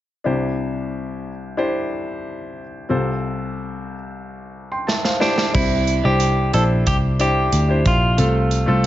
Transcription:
0.24 C2 C3 D4 E4 G4 C5
1.57 D4 E4 G4 C5
2.89 C2 C3 C4 F4 A4 C5
4.72 G5 C6
4.87 E5 A5, snare
5.04 C5 F5, snare
5.20 D4 E4 G4 C5, snare
5.38 snare
5.53 C2 C3 D4 E4 G4 C5, kick, crash
5.87 closed hi-hat
6.03 C2 D4 E4 G4 C5
6.20 closed hi-hat
6.53 A#1 D4 E4 G4 A4 C5, closed hi-hat
6.87 C2 G4, kick, closed hi-hat
7.19 D4 E4 G4 C5, closed hi-hat
7.52 D2, closed hi-hat
7.68 D4 E4 G4 C5
7.86 A#1 F4, kick, closed hi-hat
8.17 C2 C3 A3 C4 F4 A4, closed hi-hat
8.51 closed hi-hat
8.66 C2 A3 C4 F4 A4

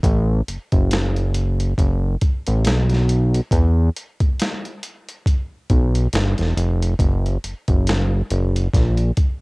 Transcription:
0.03 A1, kick, closed hi-hat
0.48 F#1, closed hi-hat
0.72 F#1, kick, closed hi-hat
0.91 snare, closed hi-hat
1.16 closed hi-hat
1.34 closed hi-hat
1.60 closed hi-hat
1.78 F#1, kick, closed hi-hat
2.21 kick, closed hi-hat
2.47 A1, closed hi-hat
2.65 B1, snare, closed hi-hat
2.90 snare, closed hi-hat
3.09 closed hi-hat
3.35 closed hi-hat
3.51 E2, kick, closed hi-hat
3.97 closed hi-hat
4.20 kick, closed hi-hat
4.40 snare, closed hi-hat
4.65 closed hi-hat
4.83 closed hi-hat
5.09 closed hi-hat
5.26 kick, closed hi-hat
5.70 B1, kick, closed hi-hat
5.95 closed hi-hat
6.13 G1, snare, closed hi-hat
6.38 E1, snare, closed hi-hat
6.57 F1, closed hi-hat
6.82 closed hi-hat
6.99 F#1, kick, closed hi-hat
7.26 closed hi-hat
7.44 F#1, closed hi-hat
7.68 F#1, kick, closed hi-hat
7.87 snare, closed hi-hat
8.30 F#1, closed hi-hat
8.56 closed hi-hat
8.73 A#1, kick, snare, closed hi-hat
8.97 closed hi-hat
9.17 kick, closed hi-hat

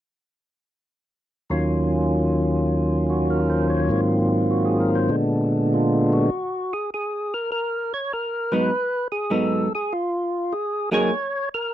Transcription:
1.50 D#2 D#3 F#3 C#4 F4
3.10 F#4
3.30 A#4
3.50 C5
3.70 C#5
3.89 G#2 D#3 F#3 A#3 C4 F4
4.51 F#4
4.65 G#4
4.80 A#4
4.95 C5
5.09 A#2 D3 G#3 B3 D4
5.74 F4
6.13 F#4
6.73 G#4
6.94 G#4
7.34 A#4
7.52 A#4
7.94 C#5
8.13 A#4
8.52 G#2 F#3 B3 D#4 B4
9.12 G#4
9.30 G#2 F#3 B3 D#4 A4
9.75 G#4
9.93 F4
10.53 G#4
10.91 F#3 A#3 D#4 G#4 C#5
11.54 A#4

